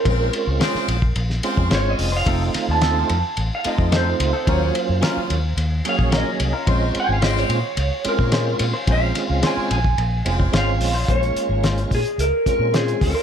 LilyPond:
<<
  \new Staff \with { instrumentName = "Clean electric guitar" } { \time 4/4 \key bes \minor \tempo 4 = 109 bes'2 r4 des''16 ees''8 f''16~ | f''8. a''4. f''16 ees''8 c''4~ | c''2 r8 f''8 ees''4~ | ees''8 aes''16 f''16 ees''16 des''4~ des''16 bes'4 r8 |
f''4 aes''8 aes''4. f''4 | des''4 r8 aes'8 bes'8 bes'8 aes'8 bes'8 | }
  \new Staff \with { instrumentName = "Horn section" } { \time 4/4 \key bes \minor <c' des' aes' bes' c''>8 r8 <c' aes' bes' c''>8. r8. <c' aes' bes' c''>8. r8. | <c' ees' f' a' c''>8 r8 <c' ees' f' a' c''>8. r8. <c' ees' f' a' c''>8. r8. | <des' ees' f' ges' des''>8 r8 <f des' ees' f'>8. r8. <des' ees' f' ges' des''>8. r8. | <c' des' aes' bes' c''>8 r8 <c' aes' bes' c''>8. r8. <c' aes' bes' c''>8. r8. |
<c' des' aes' bes' c''>8 r8 <c' aes' bes' c''>8. r8. <c' aes' bes' c''>8. r8. | r1 | }
  \new Staff \with { instrumentName = "Clean electric guitar" } { \time 4/4 \key bes \minor r4 <aes des' f' c''>16 r4. r16 <aes des' f' c''>16 r8 <des' f' c''>16 | <a c' ees' a'>16 r8. <a c' ees' a'>16 r4. r16 <a c' ees' a'>16 r8 <c' ees' a'>16 | <ges des' f' bes'>16 r8. <ges des' f' bes'>16 r4. r16 <ges des' f' bes'>16 r8 <des' f' bes'>16 | <aes des' f' c''>16 r8. <aes des' f' c''>16 r4. r16 <aes des' f' c''>16 r8 <des' f' c''>16 |
r4 <aes des' f' c''>16 r4. r16 <aes des' f' c''>16 r8 <des' f' c''>16 | <aes des' f' c''>16 r8. <aes des' f' c''>16 r4. r16 <aes des' f' c''>16 r8 <des' f' c''>16 | }
  \new Staff \with { instrumentName = "Tonewheel organ" } { \time 4/4 \key bes \minor <aes c' des' f'>4. r4 <aes c' des' f'>4~ <aes c' des' f'>16 r16 | <a c' ees' f'>4. r4 <a c' ees' f'>4~ <a c' ees' f'>16 r16 | <ges bes des' f'>4. r4 <ges bes des' aes'>4~ <ges bes des' aes'>16 r16 | <aes c' des' f'>4. r4 <aes c' des' f'>4~ <aes c' des' f'>16 r16 |
<aes c' des' f'>4. r4 <aes c' des' f'>4~ <aes c' des' f'>16 r16 | <aes bes des' f'>4. r4 <aes c' des' f'>4~ <aes c' des' f'>16 r16 | }
  \new Staff \with { instrumentName = "Fingered electric bass" } { \clef bass \time 4/4 \key bes \minor bes,,8 r16 des,16 r8 bes,,8 bes,,8 r16 f,16 aes,,8 f,,8 | f,,8 r16 ees,8. f,16 r16 a,,16 r8 f,8. des,16 r16 | ees,8 r16 ges,16 r8 ees,8 ees,8 r16 bes,,8 r16 c,16 r16 | bes,,8 r16 aes,,8. bes,16 r16 des,16 r8 bes,8. bes,16 r16 |
bes,,8 r16 des,16 r8 bes,,8 bes,,8 f,,8 aes,,8 bes,,8 | bes,,8 r16 aes,,8. bes,16 r16 des,16 r8 bes,8. d,16 r16 | }
  \new DrumStaff \with { instrumentName = "Drums" } \drummode { \time 4/4 <bd rb>8 rb8 <rb sn>16 sn16 rb16 bd16 rb16 sn16 rb16 bd16 <rb sn>8 hho8 | <bd rb>8 <rb sn>8 <rb sn>8 rb8 rb8 rb16 bd16 <rb sn>8 rb8 | <bd rb>8 rb8 <rb sn>8 rb8 rb8 rb16 bd16 <rb sn>8 rb8 | <bd rb>8 rb8 <rb sn>16 sn16 rb8 rb8 rb16 bd16 <rb sn>8 rb8 |
<bd rb>8 <rb sn>8 <rb sn>8 rb16 bd16 rb8 rb16 bd16 <rb sn>8 hho8 | <hh bd>16 hh16 hh8 <hh sn>16 hh16 <hho bd>16 hh16 hh8 <hh bd>8 <hh sn>16 hh16 <hho bd>8 | }
>>